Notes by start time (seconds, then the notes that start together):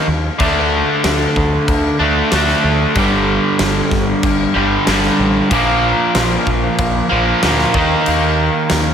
0.08 D#2
0.39 D2 D3 A3, kick, crash
0.43 D4
1.04 D2, snare, crash
1.36 D2, kick
1.68 D2, kick, crash
2.00 D2 D3 A3 D4
2.31 D2 D3 A3, snare, crash
2.35 D4
2.48 snare
2.64 D2
2.95 G1 G2 D3, kick, crash
2.99 G3
3.59 G1, snare, crash
3.91 G1, kick, snare
4.23 G1, kick, crash
4.54 G1 G2 D3 G3
4.86 G1 G2 D3, snare, crash
4.90 G3
5.03 snare
5.19 A1
5.50 A#1 A#2 F3 A#3, kick, crash
6.15 A#1, snare, crash
6.47 A#1, kick
6.79 A#1, kick, crash
7.09 A#1 F3 A#3
7.14 A#2
7.41 D2 A#2 F3, snare, crash
7.45 A#3
7.59 snare
7.74 D#2 D#3 A#3 D#4, kick
8.06 D#2, crash
8.70 D#2, snare, crash